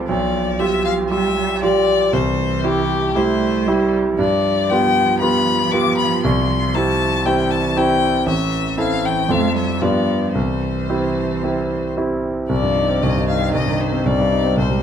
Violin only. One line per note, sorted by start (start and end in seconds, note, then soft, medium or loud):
0.09 0.61 D5 medium
0.59 0.84 E5 medium
0.85 0.93 F5 medium
1.10 1.60 E5 medium
1.63 2.15 D5 medium
2.13 2.66 C5 medium
2.64 3.17 G4 medium
3.16 3.93 C5 medium
4.19 4.71 D5 medium
4.70 5.19 G5 medium
5.19 5.73 B5 medium
5.71 5.97 D6 medium
5.97 6.22 B5 medium
6.23 6.76 C6 medium
6.74 7.27 A5 medium
7.26 7.52 G5 medium
7.51 7.79 A5 medium
7.77 8.28 G5 medium
8.28 8.78 E5 medium
8.80 9.07 F5 medium
9.05 9.32 G5 medium
9.31 9.56 F5 medium
9.56 9.83 E5 soft
9.81 10.34 D5 medium
10.34 11.93 C5 soft
12.50 13.04 D5 medium
13.02 13.28 D#5 soft
13.28 13.53 F5 soft
13.54 13.82 D#5 medium
13.80 14.08 C5 soft
14.06 14.57 D5 medium
14.58 14.83 C5 medium